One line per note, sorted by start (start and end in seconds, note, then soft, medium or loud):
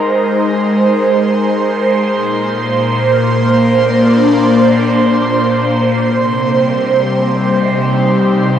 0.00 2.11 G#3 medium
0.00 2.12 D#4 medium
0.00 3.68 A#4 medium
0.00 8.59 C5 medium
2.12 5.99 A#2 medium
2.39 7.55 A#3 medium
3.54 6.01 D4 medium
6.01 8.59 C3 medium
6.46 8.59 G3 medium
7.27 8.59 D#4 medium